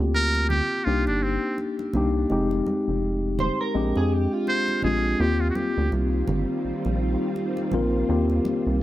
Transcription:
0.00 0.61 D2 medium
0.00 0.63 A#3 medium
0.00 0.63 C4 medium
0.00 0.64 F4 medium
0.00 0.67 G4 medium
0.15 0.47 A#4 loud
0.15 muted conga soft
0.35 muted conga soft
0.49 0.86 G4 medium
0.49 high conga medium
0.49 low conga medium
0.84 1.09 C2 loud
0.84 1.79 A#3 medium
0.84 1.79 D4 medium
0.84 1.80 D#4 medium
0.84 1.06 F4 medium
0.84 1.80 G4 medium
1.07 1.39 G1 medium
1.07 1.24 D4 medium
1.07 muted conga soft
1.22 1.58 C4 medium
1.58 muted conga soft
1.79 muted conga soft
1.93 2.26 C2 medium
1.93 2.25 A#3 medium
1.93 2.25 D4 medium
1.93 2.26 D#4 medium
1.93 2.26 G4 medium
1.93 high conga medium
1.93 low conga medium
2.30 2.62 F1 loud
2.30 3.52 G#3 medium
2.30 3.53 C4 medium
2.30 3.53 D#4 medium
2.30 3.53 G4 medium
2.30 muted conga soft
2.51 muted conga soft
2.67 high conga medium
2.88 3.51 F1 medium
3.39 3.59 C5 medium
3.39 high conga medium
3.39 low conga medium
3.61 3.94 A#4 medium
3.74 3.93 A#1 loud
3.74 4.68 G#3 medium
3.74 4.68 C4 medium
3.74 4.68 D4 medium
3.74 4.69 G4 medium
3.96 4.27 F2 medium
3.96 4.12 G#4 medium
3.96 muted conga soft
4.12 4.33 G4 medium
4.33 5.16 F4 medium
4.47 4.81 C5 loud
4.47 muted conga soft
4.68 muted conga soft
4.82 5.15 A#1 medium
4.82 5.14 G#3 medium
4.82 5.15 C4 medium
4.82 5.15 D4 medium
4.82 5.15 F4 medium
4.82 5.22 G#4 medium
4.82 high conga medium
4.82 low conga medium
5.19 5.51 D#2 loud
5.19 8.83 D#3 medium
5.19 8.83 G3 medium
5.19 6.42 A#3 medium
5.19 8.83 C4 medium
5.19 6.42 C4 medium
5.19 8.83 F4 medium
5.19 6.43 F4 medium
5.19 5.42 G4 medium
5.19 6.43 G4 medium
5.41 5.49 F4 medium
5.50 5.57 F#4 medium
5.55 5.92 G4 medium
5.55 high conga medium
5.78 5.90 D2 medium
5.92 6.23 C2 medium
5.92 muted conga soft
6.28 6.46 G1 loud
6.28 high conga medium
6.28 low conga medium
6.65 6.73 A#1 soft
6.85 7.17 A#1 medium
6.85 muted conga soft
7.36 muted conga soft
7.57 muted conga soft
7.71 8.04 A#1 medium
7.71 8.03 A#3 medium
7.71 8.04 C4 medium
7.71 8.04 F4 medium
7.71 8.04 A#4 medium
7.71 high conga medium
7.71 low conga medium
8.08 8.40 D#2 loud
8.08 8.83 A#3 medium
8.08 8.83 C4 medium
8.08 8.83 F4 medium
8.08 8.83 G4 medium
8.30 muted conga soft
8.45 high conga medium
8.67 8.83 C2 medium

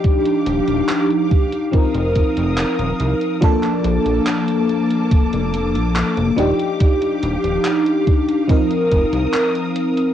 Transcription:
0.00 1.65 F3 medium
0.00 1.65 D4 medium
0.00 1.65 D#4 medium
0.00 1.66 G4 loud
0.00 1.71 G4 medium
0.00 3.39 F5 medium
0.00 1.71 D6 medium
0.04 kick loud
0.04 closed hi-hat medium
0.26 closed hi-hat soft
0.46 0.61 D#1 loud
0.46 closed hi-hat medium
0.68 0.82 D#1 medium
0.68 closed hi-hat soft
0.89 clap loud
0.89 closed hi-hat medium
1.10 closed hi-hat soft
1.31 kick loud
1.31 closed hi-hat soft
1.52 closed hi-hat soft
1.71 3.33 F3 medium
1.71 3.34 C4 medium
1.71 3.34 D#4 medium
1.71 3.41 A#4 medium
1.71 3.35 A#4 medium
1.71 3.41 D#6 medium
1.71 kick loud
1.71 closed hi-hat medium
1.94 2.23 F1 medium
1.94 closed hi-hat soft
2.15 kick medium
2.15 closed hi-hat medium
2.37 2.65 F1 medium
2.37 closed hi-hat soft
2.58 clap loud
2.58 closed hi-hat medium
2.79 2.93 D#1 loud
2.79 closed hi-hat soft
3.00 3.14 C2 medium
3.00 closed hi-hat medium
3.21 closed hi-hat soft
3.41 6.29 F3 loud
3.41 6.30 A#3 medium
3.41 6.35 A#3 medium
3.41 6.30 D4 medium
3.41 6.31 A4 loud
3.41 6.35 A5 medium
3.41 8.45 D6 medium
3.41 kick loud
3.41 closed hi-hat medium
3.63 clap soft
3.63 closed hi-hat soft
3.85 3.99 A#1 medium
3.85 closed hi-hat medium
4.06 4.20 A#1 medium
4.06 closed hi-hat soft
4.27 clap loud
4.27 closed hi-hat medium
4.48 closed hi-hat soft
4.69 closed hi-hat soft
4.90 closed hi-hat soft
5.11 5.29 F1 soft
5.11 kick loud
5.11 closed hi-hat medium
5.33 5.77 F1 medium
5.33 closed hi-hat soft
5.54 closed hi-hat medium
5.75 6.03 A#1 medium
5.75 closed hi-hat soft
5.96 clap loud
5.96 closed hi-hat medium
6.17 6.31 F1 loud
6.17 closed hi-hat soft
6.36 6.52 D#1 medium
6.36 8.40 F3 medium
6.36 8.41 D4 medium
6.36 8.41 D#4 medium
6.36 8.48 G4 medium
6.36 8.42 G4 loud
6.36 10.14 F5 medium
6.36 closed hi-hat medium
6.59 closed hi-hat soft
6.80 kick loud
6.80 closed hi-hat medium
7.01 closed hi-hat soft
7.22 7.37 D#1 loud
7.22 closed hi-hat medium
7.44 7.58 D#1 medium
7.44 closed hi-hat soft
7.65 clap loud
7.65 closed hi-hat loud
7.86 closed hi-hat soft
8.07 kick loud
8.07 closed hi-hat soft
8.29 closed hi-hat soft
8.48 10.09 F3 medium
8.48 10.10 C4 medium
8.48 10.10 D#4 medium
8.48 10.14 A#4 medium
8.48 10.11 A#4 medium
8.48 10.14 D#6 medium
8.48 kick loud
8.48 closed hi-hat medium
8.71 closed hi-hat soft
8.92 9.06 F1 medium
8.92 kick medium
8.92 closed hi-hat medium
9.13 9.27 C2 medium
9.13 closed hi-hat soft
9.34 clap loud
9.34 closed hi-hat medium
9.55 closed hi-hat soft
9.76 closed hi-hat medium
9.97 closed hi-hat soft

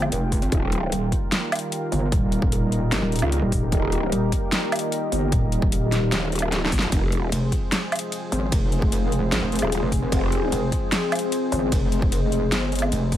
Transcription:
0.00 0.11 G1 loud
0.00 0.48 C3 medium
0.00 0.48 F3 medium
0.00 0.48 G#3 medium
0.00 6.88 F4 medium
0.00 0.48 G#4 medium
0.00 1.66 G5 medium
0.00 low woodblock medium
0.12 0.41 F1 loud
0.12 closed hi-hat medium
0.32 kick medium
0.32 open hi-hat medium
0.42 0.51 G#1 medium
0.42 closed hi-hat soft
0.52 0.91 D#1 loud
0.52 6.88 D#3 medium
0.52 6.88 G3 medium
0.52 6.88 A#3 medium
0.52 7.56 D#4 medium
0.52 6.88 A#4 medium
0.52 kick loud
0.52 closed hi-hat medium
0.72 closed hi-hat soft
0.92 1.11 D#1 loud
0.92 closed hi-hat medium
1.02 6.92 G4 medium
1.12 3.82 F5 medium
1.12 kick medium
1.12 closed hi-hat medium
1.32 snare loud
1.32 closed hi-hat medium
1.52 closed hi-hat soft
1.52 low woodblock medium
1.55 closed hi-hat medium
1.59 closed hi-hat medium
1.72 closed hi-hat medium
1.92 2.11 G1 medium
1.92 open hi-hat medium
2.12 2.91 D#1 loud
2.12 kick loud
2.12 closed hi-hat medium
2.32 closed hi-hat soft
2.42 kick loud
2.52 closed hi-hat medium
2.72 closed hi-hat medium
2.92 3.01 G1 loud
2.92 snare loud
2.92 closed hi-hat medium
3.02 3.21 D#1 loud
3.12 closed hi-hat soft
3.16 closed hi-hat medium
3.19 3.41 C#2 loud
3.19 closed hi-hat medium
3.19 low woodblock medium
3.32 closed hi-hat medium
3.42 3.71 D#1 loud
3.52 kick medium
3.52 open hi-hat medium
3.70 4.11 D#1 loud
3.70 6.92 D#5 medium
3.70 kick loud
3.70 closed hi-hat medium
3.92 closed hi-hat medium
4.12 4.31 D#1 loud
4.12 closed hi-hat medium
4.32 kick medium
4.32 closed hi-hat medium
4.52 snare loud
4.52 closed hi-hat medium
4.72 closed hi-hat soft
4.72 low woodblock medium
4.76 closed hi-hat medium
4.79 closed hi-hat medium
4.92 closed hi-hat medium
5.12 5.31 G1 loud
5.12 open hi-hat loud
5.32 6.11 D#1 loud
5.32 kick loud
5.32 closed hi-hat medium
5.52 closed hi-hat medium
5.62 kick loud
5.72 closed hi-hat medium
5.92 snare medium
5.92 closed hi-hat medium
6.12 6.53 D#1 loud
6.12 snare loud
6.12 closed hi-hat medium
6.32 closed hi-hat soft
6.36 closed hi-hat medium
6.39 closed hi-hat medium
6.39 low woodblock medium
6.52 6.71 D1 loud
6.52 snare medium
6.52 closed hi-hat medium
6.66 snare medium
6.72 6.81 G1 loud
6.72 kick medium
6.72 open hi-hat loud
6.79 6.91 D#1 loud
6.79 snare loud
6.79 closed hi-hat soft
6.92 7.31 F1 loud
6.92 13.17 F3 medium
6.92 13.17 G#3 medium
6.92 13.17 C4 medium
6.92 13.17 G#4 medium
6.92 13.17 C5 medium
6.92 kick loud
6.92 closed hi-hat medium
6.92 ride medium
7.12 closed hi-hat medium
7.28 7.51 F1 loud
7.28 13.17 G#4 medium
7.28 closed hi-hat medium
7.28 ride soft
7.35 10.75 F5 medium
7.52 kick medium
7.52 closed hi-hat medium
7.72 snare loud
7.72 closed hi-hat medium
7.72 ride medium
7.92 closed hi-hat medium
7.92 low woodblock medium
7.96 closed hi-hat medium
7.99 closed hi-hat medium
8.12 closed hi-hat medium
8.12 ride soft
8.32 8.51 G#1 medium
8.32 open hi-hat loud
8.52 9.31 F1 loud
8.52 kick loud
8.52 closed hi-hat medium
8.52 ride medium
8.72 closed hi-hat soft
8.82 kick loud
8.92 closed hi-hat medium
8.92 ride soft
9.12 closed hi-hat medium
9.32 9.41 G#1 loud
9.32 snare loud
9.32 closed hi-hat medium
9.32 ride medium
9.42 9.61 F1 loud
9.52 closed hi-hat medium
9.55 closed hi-hat medium
9.59 9.81 D#1 loud
9.59 closed hi-hat medium
9.59 low woodblock soft
9.72 closed hi-hat medium
9.72 ride soft
9.82 10.11 F1 loud
9.92 kick medium
9.92 open hi-hat loud
10.12 10.51 F1 loud
10.12 kick loud
10.12 closed hi-hat medium
10.12 ride medium
10.32 closed hi-hat medium
10.52 10.71 F1 medium
10.52 closed hi-hat medium
10.52 ride soft
10.63 13.17 D#5 medium
10.72 kick medium
10.72 closed hi-hat medium
10.92 snare loud
10.92 closed hi-hat medium
10.92 ride medium
11.12 closed hi-hat medium
11.12 low woodblock medium
11.15 closed hi-hat medium
11.19 closed hi-hat medium
11.32 closed hi-hat medium
11.32 ride soft
11.52 11.71 G#1 loud
11.52 open hi-hat loud
11.72 12.51 F1 loud
11.72 kick loud
11.72 closed hi-hat medium
11.72 ride medium
11.92 closed hi-hat medium
12.02 kick loud
12.12 closed hi-hat medium
12.12 ride soft
12.32 closed hi-hat medium
12.52 12.91 G1 loud
12.52 snare loud
12.52 closed hi-hat medium
12.52 ride medium
12.72 closed hi-hat soft
12.75 closed hi-hat medium
12.79 closed hi-hat medium
12.79 low woodblock medium
12.92 13.17 F1 medium
12.92 closed hi-hat medium
12.92 ride soft
13.12 kick medium
13.12 open hi-hat medium

